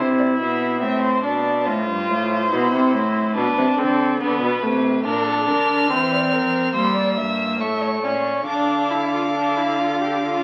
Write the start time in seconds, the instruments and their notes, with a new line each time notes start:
Already playing: cello C3, viola E4
0.18 violin D5
0.39 cello B2, violin E5
0.81 cello A2, viola C4, violin E5
1.02 violin C5
1.23 cello B2, viola D4, violin D5
1.66 cello A2, viola F4, violin C5
1.89 cello G2
2.10 cello A2
2.51 cello B2, viola E4
2.73 cello C3
2.93 cello A2
3.35 cello B2, viola D4, violin B4
3.58 cello C3
3.78 cello D3, viola C4, violin A4
4.20 cello D3, viola B3, violin B4
4.41 cello B2
4.63 cello C3, viola A3
5.05 cello A#2, viola D4, violin A#4 F6
5.27 violin A4
5.48 cello D3, violin A#4
5.90 cello E3, viola C4, violin C5
6.12 violin D5
6.32 cello F3, violin A#4
6.74 cello G3, viola A#3, violin C5 E6
6.96 violin D5
7.17 cello G2, violin E5
7.60 cello A2, viola A3, violin E5 C#6
7.82 violin C#5
8.02 cello A#2, viola C#4, violin D5
8.46 cello D3, viola D4, violin F5 D6
8.91 viola E4
9.14 viola F4
9.36 viola D4
9.58 viola E4
9.79 viola F4
10.01 viola G4
10.24 viola F4